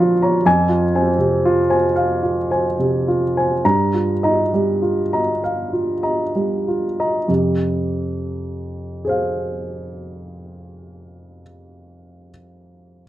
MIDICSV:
0, 0, Header, 1, 2, 480
1, 0, Start_track
1, 0, Key_signature, -4, "minor"
1, 0, Tempo, 958466
1, 224, Time_signature, 6, 3, 24, 8
1, 712, Tempo, 1054482
1, 1192, Tempo, 1176471
1, 2152, Tempo, 1226994
1, 3112, Tempo, 1183432
1, 5464, End_track
2, 0, Start_track
2, 0, Title_t, "Grand piano"
2, 0, Program_c, 0, 0
2, 0, Control_c, 0, 64, 127
2, 0, Note_on_c, 0, 46, 71
2, 0, Note_on_c, 0, 53, 53
2, 0, Note_on_c, 0, 61, 52
2, 0, Note_on_c, 0, 65, 52
2, 0, Note_on_c, 0, 73, 43
2, 0, Note_on_c, 0, 77, 66
2, 0, Note_on_c, 0, 82, 54
2, 64, Note_off_c, 0, 53, 0
2, 112, Note_off_c, 0, 82, 0
2, 112, Note_on_c, 0, 82, 48
2, 116, Note_off_c, 0, 73, 0
2, 116, Note_on_c, 0, 73, 43
2, 181, Note_off_c, 0, 65, 0
2, 206, Note_off_c, 0, 46, 0
2, 215, Note_off_c, 0, 82, 0
2, 217, Note_off_c, 0, 73, 0
2, 228, Note_on_c, 0, 41, 62
2, 232, Control_c, 0, 64, 0
2, 232, Note_on_c, 0, 80, 73
2, 235, Note_off_c, 0, 61, 0
2, 236, Note_off_c, 0, 77, 0
2, 332, Control_c, 0, 64, 127
2, 346, Note_on_c, 0, 65, 45
2, 420, Note_off_c, 0, 80, 0
2, 476, Note_on_c, 0, 60, 47
2, 476, Note_on_c, 0, 72, 47
2, 479, Note_on_c, 0, 80, 47
2, 539, Note_off_c, 0, 65, 0
2, 582, Note_off_c, 0, 72, 0
2, 583, Note_off_c, 0, 80, 0
2, 593, Note_on_c, 0, 48, 45
2, 727, Note_on_c, 0, 65, 53
2, 784, Note_off_c, 0, 48, 0
2, 837, Note_on_c, 0, 72, 44
2, 841, Note_on_c, 0, 80, 48
2, 857, Note_off_c, 0, 60, 0
2, 906, Note_off_c, 0, 65, 0
2, 940, Note_off_c, 0, 72, 0
2, 942, Note_off_c, 0, 80, 0
2, 956, Note_on_c, 0, 77, 54
2, 1079, Note_on_c, 0, 65, 42
2, 1147, Note_off_c, 0, 77, 0
2, 1205, Note_on_c, 0, 72, 40
2, 1208, Note_on_c, 0, 80, 44
2, 1266, Note_off_c, 0, 65, 0
2, 1302, Note_off_c, 0, 72, 0
2, 1304, Note_off_c, 0, 80, 0
2, 1321, Note_on_c, 0, 48, 39
2, 1439, Note_on_c, 0, 65, 43
2, 1502, Note_off_c, 0, 48, 0
2, 1558, Note_on_c, 0, 72, 35
2, 1558, Note_on_c, 0, 80, 41
2, 1622, Note_off_c, 0, 65, 0
2, 1648, Note_off_c, 0, 41, 0
2, 1659, Note_off_c, 0, 72, 0
2, 1660, Note_off_c, 0, 80, 0
2, 1670, Note_on_c, 0, 43, 48
2, 1671, Control_c, 0, 64, 0
2, 1671, Note_on_c, 0, 82, 54
2, 1775, Control_c, 0, 64, 127
2, 1790, Note_on_c, 0, 65, 33
2, 1862, Note_off_c, 0, 82, 0
2, 1908, Note_on_c, 0, 75, 38
2, 1910, Note_on_c, 0, 63, 38
2, 1912, Note_on_c, 0, 82, 43
2, 1983, Note_off_c, 0, 65, 0
2, 2018, Note_off_c, 0, 75, 0
2, 2020, Note_off_c, 0, 82, 0
2, 2033, Note_on_c, 0, 55, 39
2, 2149, Note_on_c, 0, 65, 37
2, 2225, Note_off_c, 0, 55, 0
2, 2270, Note_on_c, 0, 82, 39
2, 2273, Note_on_c, 0, 75, 36
2, 2296, Note_off_c, 0, 63, 0
2, 2340, Note_off_c, 0, 65, 0
2, 2376, Note_off_c, 0, 82, 0
2, 2378, Note_off_c, 0, 75, 0
2, 2390, Note_on_c, 0, 77, 40
2, 2504, Note_on_c, 0, 65, 33
2, 2579, Note_off_c, 0, 77, 0
2, 2622, Note_on_c, 0, 75, 33
2, 2623, Note_on_c, 0, 82, 35
2, 2697, Note_off_c, 0, 65, 0
2, 2733, Note_off_c, 0, 75, 0
2, 2733, Note_off_c, 0, 82, 0
2, 2748, Note_on_c, 0, 55, 34
2, 2877, Note_on_c, 0, 65, 31
2, 2946, Note_off_c, 0, 55, 0
2, 3000, Note_on_c, 0, 75, 34
2, 3001, Note_on_c, 0, 82, 35
2, 3068, Note_off_c, 0, 65, 0
2, 3099, Note_off_c, 0, 43, 0
2, 3103, Note_off_c, 0, 75, 0
2, 3103, Note_off_c, 0, 82, 0
2, 3111, Note_on_c, 0, 41, 43
2, 3115, Note_on_c, 0, 48, 43
2, 3120, Control_c, 0, 64, 0
2, 3212, Control_c, 0, 64, 127
2, 3827, Note_on_c, 0, 68, 35
2, 3838, Note_on_c, 0, 72, 32
2, 3846, Note_on_c, 0, 77, 36
2, 4790, Note_off_c, 0, 41, 0
2, 4793, Note_off_c, 0, 48, 0
2, 5139, Note_off_c, 0, 68, 0
2, 5144, Note_off_c, 0, 72, 0
2, 5148, Note_off_c, 0, 77, 0
2, 5446, Control_c, 0, 64, 0
2, 5464, End_track
0, 0, End_of_file